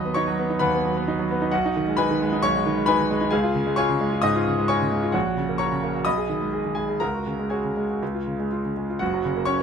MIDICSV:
0, 0, Header, 1, 2, 480
1, 0, Start_track
1, 0, Tempo, 454201
1, 1613, Time_signature, 4, 2, 24, 8
1, 6405, Tempo, 488599
1, 9908, End_track
2, 0, Start_track
2, 0, Title_t, "Grand piano"
2, 0, Program_c, 0, 0
2, 0, Control_c, 0, 64, 127
2, 0, Note_on_c, 0, 39, 65
2, 0, Note_on_c, 0, 54, 61
2, 0, Note_on_c, 0, 63, 61
2, 0, Note_on_c, 0, 75, 73
2, 0, Note_on_c, 0, 83, 70
2, 0, Note_on_c, 0, 87, 88
2, 54, Note_on_c, 0, 59, 54
2, 120, Note_off_c, 0, 54, 0
2, 129, Note_off_c, 0, 75, 0
2, 131, Note_off_c, 0, 83, 0
2, 151, Note_on_c, 0, 85, 93
2, 157, Note_off_c, 0, 87, 0
2, 163, Note_on_c, 0, 73, 72
2, 173, Note_off_c, 0, 63, 0
2, 173, Note_on_c, 0, 63, 73
2, 242, Note_off_c, 0, 59, 0
2, 293, Note_on_c, 0, 54, 70
2, 362, Note_off_c, 0, 63, 0
2, 412, Note_on_c, 0, 59, 65
2, 483, Note_off_c, 0, 54, 0
2, 527, Note_on_c, 0, 63, 67
2, 603, Note_off_c, 0, 59, 0
2, 614, Note_off_c, 0, 73, 0
2, 621, Note_off_c, 0, 39, 0
2, 627, Note_on_c, 0, 83, 91
2, 637, Note_on_c, 0, 71, 66
2, 639, Note_on_c, 0, 78, 75
2, 642, Note_off_c, 0, 85, 0
2, 644, Note_on_c, 0, 39, 75
2, 721, Note_off_c, 0, 63, 0
2, 775, Note_on_c, 0, 59, 61
2, 899, Note_on_c, 0, 54, 56
2, 967, Note_off_c, 0, 59, 0
2, 1022, Note_on_c, 0, 59, 68
2, 1089, Note_off_c, 0, 54, 0
2, 1140, Note_on_c, 0, 63, 69
2, 1210, Note_off_c, 0, 59, 0
2, 1260, Note_on_c, 0, 54, 58
2, 1324, Note_off_c, 0, 71, 0
2, 1325, Note_off_c, 0, 78, 0
2, 1328, Note_off_c, 0, 63, 0
2, 1362, Note_off_c, 0, 83, 0
2, 1385, Note_on_c, 0, 59, 70
2, 1448, Note_off_c, 0, 54, 0
2, 1497, Note_on_c, 0, 63, 66
2, 1571, Note_off_c, 0, 59, 0
2, 1581, Note_off_c, 0, 39, 0
2, 1601, Note_on_c, 0, 78, 88
2, 1611, Note_on_c, 0, 75, 61
2, 1612, Note_on_c, 0, 66, 67
2, 1615, Note_off_c, 0, 63, 0
2, 1620, Note_on_c, 0, 35, 75
2, 1630, Control_c, 0, 64, 0
2, 1750, Note_on_c, 0, 63, 73
2, 1794, Control_c, 0, 64, 127
2, 1866, Note_on_c, 0, 51, 59
2, 1935, Note_off_c, 0, 63, 0
2, 1986, Note_on_c, 0, 56, 58
2, 2055, Note_off_c, 0, 51, 0
2, 2062, Note_off_c, 0, 75, 0
2, 2063, Note_off_c, 0, 66, 0
2, 2078, Note_on_c, 0, 83, 102
2, 2092, Note_off_c, 0, 78, 0
2, 2092, Note_on_c, 0, 71, 76
2, 2092, Note_on_c, 0, 80, 70
2, 2097, Note_on_c, 0, 63, 71
2, 2176, Note_off_c, 0, 56, 0
2, 2228, Note_on_c, 0, 51, 72
2, 2291, Note_off_c, 0, 63, 0
2, 2344, Note_on_c, 0, 56, 70
2, 2416, Note_off_c, 0, 51, 0
2, 2457, Note_on_c, 0, 63, 66
2, 2532, Note_off_c, 0, 56, 0
2, 2540, Note_off_c, 0, 71, 0
2, 2540, Note_off_c, 0, 80, 0
2, 2551, Note_off_c, 0, 35, 0
2, 2563, Note_on_c, 0, 85, 116
2, 2567, Note_off_c, 0, 83, 0
2, 2573, Note_on_c, 0, 73, 85
2, 2581, Note_on_c, 0, 35, 74
2, 2646, Note_off_c, 0, 63, 0
2, 2702, Note_on_c, 0, 56, 66
2, 2816, Note_on_c, 0, 51, 62
2, 2884, Note_off_c, 0, 56, 0
2, 2931, Note_on_c, 0, 56, 60
2, 3000, Note_off_c, 0, 51, 0
2, 3010, Note_off_c, 0, 73, 0
2, 3023, Note_on_c, 0, 83, 105
2, 3036, Note_on_c, 0, 80, 77
2, 3037, Note_off_c, 0, 85, 0
2, 3038, Note_on_c, 0, 71, 74
2, 3046, Note_on_c, 0, 63, 75
2, 3117, Note_off_c, 0, 56, 0
2, 3170, Note_on_c, 0, 51, 56
2, 3234, Note_off_c, 0, 63, 0
2, 3287, Note_on_c, 0, 56, 71
2, 3355, Note_off_c, 0, 51, 0
2, 3394, Note_on_c, 0, 63, 69
2, 3472, Note_off_c, 0, 56, 0
2, 3477, Note_off_c, 0, 80, 0
2, 3479, Note_off_c, 0, 71, 0
2, 3490, Note_off_c, 0, 35, 0
2, 3493, Note_on_c, 0, 80, 86
2, 3504, Note_on_c, 0, 68, 76
2, 3505, Note_off_c, 0, 83, 0
2, 3508, Note_on_c, 0, 77, 69
2, 3514, Note_off_c, 0, 63, 0
2, 3515, Note_on_c, 0, 37, 74
2, 3535, Control_c, 0, 64, 0
2, 3632, Note_on_c, 0, 65, 70
2, 3718, Control_c, 0, 64, 127
2, 3754, Note_on_c, 0, 49, 65
2, 3821, Note_off_c, 0, 65, 0
2, 3875, Note_on_c, 0, 56, 63
2, 3941, Note_off_c, 0, 49, 0
2, 3948, Note_off_c, 0, 68, 0
2, 3950, Note_off_c, 0, 77, 0
2, 3974, Note_off_c, 0, 80, 0
2, 3975, Note_on_c, 0, 85, 104
2, 3987, Note_on_c, 0, 73, 76
2, 3990, Note_on_c, 0, 80, 85
2, 3997, Note_on_c, 0, 65, 71
2, 4062, Note_off_c, 0, 56, 0
2, 4115, Note_on_c, 0, 49, 64
2, 4184, Note_off_c, 0, 65, 0
2, 4235, Note_on_c, 0, 56, 66
2, 4306, Note_off_c, 0, 49, 0
2, 4358, Note_on_c, 0, 65, 62
2, 4428, Note_off_c, 0, 56, 0
2, 4439, Note_off_c, 0, 73, 0
2, 4440, Note_off_c, 0, 80, 0
2, 4444, Note_off_c, 0, 37, 0
2, 4455, Note_on_c, 0, 87, 105
2, 4467, Note_off_c, 0, 85, 0
2, 4471, Note_on_c, 0, 75, 86
2, 4475, Note_on_c, 0, 44, 72
2, 4550, Note_off_c, 0, 65, 0
2, 4606, Note_on_c, 0, 65, 70
2, 4668, Note_off_c, 0, 44, 0
2, 4727, Note_on_c, 0, 49, 54
2, 4794, Note_off_c, 0, 65, 0
2, 4847, Note_on_c, 0, 56, 59
2, 4914, Note_off_c, 0, 49, 0
2, 4921, Note_off_c, 0, 75, 0
2, 4947, Note_off_c, 0, 87, 0
2, 4947, Note_on_c, 0, 85, 99
2, 4955, Note_on_c, 0, 73, 75
2, 4957, Note_on_c, 0, 80, 77
2, 4969, Note_on_c, 0, 65, 68
2, 5034, Note_off_c, 0, 56, 0
2, 5091, Note_on_c, 0, 49, 62
2, 5156, Note_off_c, 0, 65, 0
2, 5201, Note_on_c, 0, 56, 62
2, 5278, Note_off_c, 0, 49, 0
2, 5321, Note_on_c, 0, 65, 65
2, 5394, Note_off_c, 0, 56, 0
2, 5407, Note_off_c, 0, 73, 0
2, 5408, Note_off_c, 0, 80, 0
2, 5414, Note_on_c, 0, 78, 80
2, 5427, Note_on_c, 0, 66, 64
2, 5428, Note_on_c, 0, 73, 64
2, 5435, Note_on_c, 0, 34, 72
2, 5437, Note_off_c, 0, 85, 0
2, 5442, Note_off_c, 0, 65, 0
2, 5461, Control_c, 0, 64, 0
2, 5550, Note_off_c, 0, 66, 0
2, 5566, Note_on_c, 0, 66, 62
2, 5647, Control_c, 0, 64, 127
2, 5677, Note_on_c, 0, 49, 52
2, 5757, Note_off_c, 0, 66, 0
2, 5802, Note_on_c, 0, 58, 57
2, 5871, Note_off_c, 0, 49, 0
2, 5881, Note_off_c, 0, 73, 0
2, 5898, Note_on_c, 0, 85, 90
2, 5908, Note_on_c, 0, 82, 65
2, 5909, Note_off_c, 0, 78, 0
2, 5910, Note_on_c, 0, 73, 69
2, 5916, Note_on_c, 0, 66, 64
2, 5994, Note_off_c, 0, 58, 0
2, 6043, Note_on_c, 0, 49, 58
2, 6111, Note_off_c, 0, 66, 0
2, 6168, Note_on_c, 0, 58, 59
2, 6235, Note_off_c, 0, 49, 0
2, 6282, Note_on_c, 0, 66, 61
2, 6358, Note_off_c, 0, 58, 0
2, 6362, Note_off_c, 0, 82, 0
2, 6363, Note_off_c, 0, 73, 0
2, 6371, Note_off_c, 0, 34, 0
2, 6389, Note_on_c, 0, 87, 102
2, 6392, Note_off_c, 0, 85, 0
2, 6401, Note_on_c, 0, 83, 64
2, 6403, Note_off_c, 0, 66, 0
2, 6403, Note_on_c, 0, 75, 70
2, 6411, Note_on_c, 0, 35, 70
2, 6419, Control_c, 0, 64, 0
2, 6517, Note_on_c, 0, 68, 57
2, 6573, Control_c, 0, 64, 127
2, 6633, Note_on_c, 0, 51, 48
2, 6701, Note_off_c, 0, 68, 0
2, 6751, Note_on_c, 0, 56, 51
2, 6818, Note_off_c, 0, 51, 0
2, 6866, Note_on_c, 0, 68, 54
2, 6938, Note_off_c, 0, 56, 0
2, 6980, Note_on_c, 0, 51, 43
2, 7056, Note_off_c, 0, 68, 0
2, 7062, Note_off_c, 0, 83, 0
2, 7063, Note_off_c, 0, 75, 0
2, 7080, Note_on_c, 0, 80, 74
2, 7094, Note_on_c, 0, 68, 59
2, 7096, Note_off_c, 0, 87, 0
2, 7100, Note_on_c, 0, 56, 49
2, 7172, Note_off_c, 0, 51, 0
2, 7205, Note_off_c, 0, 68, 0
2, 7219, Note_on_c, 0, 68, 52
2, 7293, Note_off_c, 0, 56, 0
2, 7319, Note_off_c, 0, 35, 0
2, 7327, Note_on_c, 0, 82, 78
2, 7332, Note_off_c, 0, 80, 0
2, 7336, Note_on_c, 0, 70, 60
2, 7336, Note_on_c, 0, 78, 49
2, 7342, Note_off_c, 0, 68, 0
2, 7343, Note_on_c, 0, 37, 60
2, 7362, Control_c, 0, 64, 0
2, 7466, Note_on_c, 0, 66, 46
2, 7535, Control_c, 0, 64, 127
2, 7590, Note_on_c, 0, 49, 47
2, 7662, Note_off_c, 0, 66, 0
2, 7714, Note_on_c, 0, 56, 45
2, 7786, Note_off_c, 0, 49, 0
2, 7795, Note_off_c, 0, 70, 0
2, 7795, Note_off_c, 0, 78, 0
2, 7816, Note_on_c, 0, 80, 56
2, 7825, Note_off_c, 0, 82, 0
2, 7828, Note_on_c, 0, 73, 42
2, 7829, Note_on_c, 0, 68, 47
2, 7835, Note_on_c, 0, 66, 52
2, 7909, Note_off_c, 0, 56, 0
2, 7961, Note_on_c, 0, 49, 42
2, 8030, Note_off_c, 0, 66, 0
2, 8083, Note_on_c, 0, 56, 49
2, 8154, Note_off_c, 0, 49, 0
2, 8211, Note_on_c, 0, 66, 46
2, 8277, Note_off_c, 0, 56, 0
2, 8294, Note_off_c, 0, 37, 0
2, 8328, Note_off_c, 0, 66, 0
2, 8335, Note_on_c, 0, 37, 63
2, 8343, Control_c, 0, 64, 0
2, 8453, Note_on_c, 0, 65, 52
2, 8489, Control_c, 0, 64, 127
2, 8575, Note_on_c, 0, 49, 45
2, 8646, Note_off_c, 0, 65, 0
2, 8696, Note_on_c, 0, 56, 47
2, 8768, Note_off_c, 0, 49, 0
2, 8772, Note_off_c, 0, 73, 0
2, 8773, Note_off_c, 0, 68, 0
2, 8806, Note_off_c, 0, 80, 0
2, 8824, Note_on_c, 0, 65, 48
2, 8890, Note_off_c, 0, 56, 0
2, 8951, Note_on_c, 0, 49, 38
2, 9015, Note_off_c, 0, 65, 0
2, 9066, Note_on_c, 0, 56, 46
2, 9140, Note_off_c, 0, 49, 0
2, 9193, Note_on_c, 0, 65, 49
2, 9256, Note_off_c, 0, 56, 0
2, 9277, Note_off_c, 0, 37, 0
2, 9286, Note_on_c, 0, 78, 82
2, 9295, Note_on_c, 0, 30, 67
2, 9296, Note_on_c, 0, 66, 65
2, 9306, Note_off_c, 0, 65, 0
2, 9307, Note_on_c, 0, 42, 69
2, 9317, Control_c, 0, 64, 0
2, 9424, Note_on_c, 0, 54, 61
2, 9479, Control_c, 0, 64, 127
2, 9538, Note_on_c, 0, 49, 62
2, 9608, Note_off_c, 0, 54, 0
2, 9652, Note_on_c, 0, 58, 61
2, 9723, Note_off_c, 0, 49, 0
2, 9733, Note_off_c, 0, 66, 0
2, 9739, Note_on_c, 0, 85, 97
2, 9750, Note_on_c, 0, 73, 72
2, 9760, Note_off_c, 0, 78, 0
2, 9761, Note_on_c, 0, 61, 69
2, 9837, Note_off_c, 0, 58, 0
2, 9908, Note_off_c, 0, 30, 0
2, 9908, Note_off_c, 0, 42, 0
2, 9908, Note_off_c, 0, 61, 0
2, 9908, Note_off_c, 0, 73, 0
2, 9908, Note_off_c, 0, 85, 0
2, 9908, End_track
0, 0, End_of_file